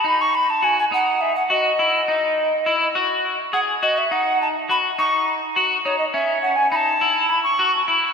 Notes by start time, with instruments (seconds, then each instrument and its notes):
0.04 clean electric guitar D#4, recorder B5
0.21 recorder C#6
0.35 recorder B5
0.50 recorder A5
0.62 clean electric guitar F#4, recorder G#5
0.79 recorder G#5
0.92 clean electric guitar D#4, recorder F#5
1.21 recorder E5
1.36 recorder F#5
1.50 clean electric guitar F#4, recorder D#5
1.79 clean electric guitar E4
2.08 clean electric guitar D#4
2.66 clean electric guitar E4
2.95 clean electric guitar F#4
3.53 clean electric guitar G#4, recorder F#5
3.83 clean electric guitar F#4, recorder D#5
3.98 recorder E5
4.11 clean electric guitar D#4, recorder F#5
4.42 recorder A5
4.69 clean electric guitar F#4, recorder B5
4.98 clean electric guitar D#4, recorder C#6
5.56 clean electric guitar F#4
5.85 clean electric guitar D#4, recorder C#5
5.99 recorder D#5
6.14 clean electric guitar C#4, recorder E5
6.43 recorder F#5
6.56 recorder G#5
6.71 clean electric guitar D#4, recorder B5
6.76 recorder A5
7.01 clean electric guitar E4
7.29 recorder B5
7.44 recorder C#6
7.59 clean electric guitar F#4
7.88 clean electric guitar E4